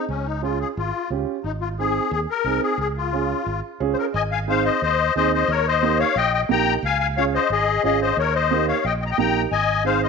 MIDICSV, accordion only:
0, 0, Header, 1, 2, 480
1, 0, Start_track
1, 0, Key_signature, -4, "major"
1, 0, Tempo, 336511
1, 134, Time_signature, 4, 2, 24, 8
1, 14390, End_track
2, 0, Start_track
2, 0, Title_t, "Accordion"
2, 0, Program_c, 0, 21
2, 135, Note_on_c, 0, 61, 77
2, 363, Note_on_c, 0, 63, 72
2, 383, Note_off_c, 0, 61, 0
2, 593, Note_off_c, 0, 63, 0
2, 613, Note_on_c, 0, 65, 80
2, 839, Note_off_c, 0, 65, 0
2, 864, Note_on_c, 0, 68, 84
2, 971, Note_off_c, 0, 68, 0
2, 1115, Note_on_c, 0, 65, 84
2, 1554, Note_off_c, 0, 65, 0
2, 2054, Note_on_c, 0, 63, 80
2, 2164, Note_off_c, 0, 63, 0
2, 2295, Note_on_c, 0, 65, 84
2, 2405, Note_off_c, 0, 65, 0
2, 2559, Note_on_c, 0, 68, 94
2, 3005, Note_off_c, 0, 68, 0
2, 3027, Note_on_c, 0, 68, 94
2, 3134, Note_off_c, 0, 68, 0
2, 3288, Note_on_c, 0, 70, 101
2, 3724, Note_off_c, 0, 70, 0
2, 3758, Note_on_c, 0, 68, 89
2, 3975, Note_off_c, 0, 68, 0
2, 3997, Note_on_c, 0, 68, 92
2, 4102, Note_off_c, 0, 68, 0
2, 4243, Note_on_c, 0, 65, 84
2, 5139, Note_off_c, 0, 65, 0
2, 5607, Note_on_c, 0, 72, 74
2, 5668, Note_off_c, 0, 72, 0
2, 5681, Note_on_c, 0, 70, 86
2, 5786, Note_off_c, 0, 70, 0
2, 5910, Note_on_c, 0, 75, 81
2, 5928, Note_on_c, 0, 80, 105
2, 6017, Note_off_c, 0, 75, 0
2, 6032, Note_off_c, 0, 80, 0
2, 6154, Note_on_c, 0, 77, 75
2, 6167, Note_on_c, 0, 80, 91
2, 6261, Note_off_c, 0, 77, 0
2, 6271, Note_off_c, 0, 80, 0
2, 6404, Note_on_c, 0, 72, 73
2, 6413, Note_on_c, 0, 77, 97
2, 6606, Note_off_c, 0, 72, 0
2, 6625, Note_off_c, 0, 77, 0
2, 6628, Note_on_c, 0, 72, 70
2, 6630, Note_on_c, 0, 75, 92
2, 6851, Note_off_c, 0, 72, 0
2, 6872, Note_off_c, 0, 75, 0
2, 6883, Note_on_c, 0, 72, 84
2, 6894, Note_on_c, 0, 75, 101
2, 7323, Note_off_c, 0, 72, 0
2, 7328, Note_off_c, 0, 75, 0
2, 7368, Note_on_c, 0, 72, 79
2, 7375, Note_on_c, 0, 75, 102
2, 7582, Note_off_c, 0, 72, 0
2, 7586, Note_off_c, 0, 75, 0
2, 7619, Note_on_c, 0, 72, 72
2, 7633, Note_on_c, 0, 75, 92
2, 7828, Note_off_c, 0, 72, 0
2, 7853, Note_on_c, 0, 70, 70
2, 7857, Note_off_c, 0, 75, 0
2, 7858, Note_on_c, 0, 73, 97
2, 8064, Note_off_c, 0, 70, 0
2, 8090, Note_off_c, 0, 73, 0
2, 8102, Note_on_c, 0, 72, 82
2, 8105, Note_on_c, 0, 75, 100
2, 8532, Note_off_c, 0, 72, 0
2, 8534, Note_off_c, 0, 75, 0
2, 8548, Note_on_c, 0, 73, 81
2, 8562, Note_on_c, 0, 77, 105
2, 8771, Note_off_c, 0, 73, 0
2, 8798, Note_on_c, 0, 75, 89
2, 8801, Note_off_c, 0, 77, 0
2, 8806, Note_on_c, 0, 79, 115
2, 9013, Note_off_c, 0, 75, 0
2, 9020, Note_off_c, 0, 79, 0
2, 9035, Note_on_c, 0, 75, 82
2, 9041, Note_on_c, 0, 79, 101
2, 9141, Note_off_c, 0, 75, 0
2, 9146, Note_off_c, 0, 79, 0
2, 9284, Note_on_c, 0, 79, 88
2, 9291, Note_on_c, 0, 82, 116
2, 9610, Note_off_c, 0, 79, 0
2, 9614, Note_off_c, 0, 82, 0
2, 9772, Note_on_c, 0, 77, 87
2, 9779, Note_on_c, 0, 80, 105
2, 9956, Note_off_c, 0, 80, 0
2, 9961, Note_off_c, 0, 77, 0
2, 9977, Note_on_c, 0, 80, 101
2, 9983, Note_on_c, 0, 77, 81
2, 10087, Note_off_c, 0, 80, 0
2, 10091, Note_off_c, 0, 77, 0
2, 10227, Note_on_c, 0, 77, 105
2, 10234, Note_on_c, 0, 73, 75
2, 10335, Note_off_c, 0, 77, 0
2, 10340, Note_off_c, 0, 73, 0
2, 10479, Note_on_c, 0, 72, 75
2, 10483, Note_on_c, 0, 75, 98
2, 10696, Note_off_c, 0, 72, 0
2, 10698, Note_off_c, 0, 75, 0
2, 10724, Note_on_c, 0, 68, 85
2, 10728, Note_on_c, 0, 75, 99
2, 11161, Note_off_c, 0, 68, 0
2, 11163, Note_off_c, 0, 75, 0
2, 11199, Note_on_c, 0, 68, 77
2, 11202, Note_on_c, 0, 75, 102
2, 11415, Note_off_c, 0, 68, 0
2, 11416, Note_off_c, 0, 75, 0
2, 11440, Note_on_c, 0, 72, 73
2, 11442, Note_on_c, 0, 75, 90
2, 11656, Note_off_c, 0, 72, 0
2, 11656, Note_off_c, 0, 75, 0
2, 11685, Note_on_c, 0, 70, 77
2, 11686, Note_on_c, 0, 73, 93
2, 11898, Note_off_c, 0, 70, 0
2, 11898, Note_off_c, 0, 73, 0
2, 11907, Note_on_c, 0, 75, 92
2, 11915, Note_on_c, 0, 72, 79
2, 12351, Note_off_c, 0, 75, 0
2, 12355, Note_off_c, 0, 72, 0
2, 12381, Note_on_c, 0, 73, 70
2, 12382, Note_on_c, 0, 77, 89
2, 12605, Note_off_c, 0, 73, 0
2, 12629, Note_off_c, 0, 77, 0
2, 12633, Note_on_c, 0, 75, 83
2, 12633, Note_on_c, 0, 79, 97
2, 12738, Note_off_c, 0, 75, 0
2, 12738, Note_off_c, 0, 79, 0
2, 12862, Note_on_c, 0, 79, 99
2, 12871, Note_on_c, 0, 75, 70
2, 12889, Note_off_c, 0, 79, 0
2, 12896, Note_off_c, 0, 75, 0
2, 12924, Note_on_c, 0, 82, 84
2, 12982, Note_off_c, 0, 82, 0
2, 12992, Note_on_c, 0, 75, 68
2, 12993, Note_on_c, 0, 79, 87
2, 13088, Note_off_c, 0, 79, 0
2, 13099, Note_off_c, 0, 75, 0
2, 13104, Note_on_c, 0, 82, 105
2, 13110, Note_on_c, 0, 79, 83
2, 13436, Note_off_c, 0, 82, 0
2, 13440, Note_off_c, 0, 79, 0
2, 13579, Note_on_c, 0, 80, 102
2, 13582, Note_on_c, 0, 75, 82
2, 14025, Note_off_c, 0, 80, 0
2, 14027, Note_off_c, 0, 75, 0
2, 14065, Note_on_c, 0, 77, 99
2, 14069, Note_on_c, 0, 72, 77
2, 14285, Note_off_c, 0, 77, 0
2, 14287, Note_off_c, 0, 72, 0
2, 14313, Note_on_c, 0, 75, 91
2, 14324, Note_on_c, 0, 72, 67
2, 14390, Note_off_c, 0, 72, 0
2, 14390, Note_off_c, 0, 75, 0
2, 14390, End_track
0, 0, End_of_file